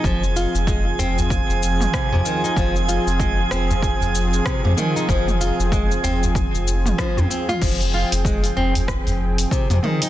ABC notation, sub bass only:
X:1
M:4/4
L:1/16
Q:"Swing 16ths" 1/4=95
K:Fm
V:1 name="Sub bass" clef=bass
F,,,3 F,,,3 F,,,3 F,,,3 z F,, z2 | F,,,3 F,,,3 F,,,3 F,,,3 z F,, z2 | F,,,3 F,,,3 F,,,3 F,,,3 z F,, z2 | F,,,3 F,,,3 F,,,3 F,,,3 z F,, z2 |]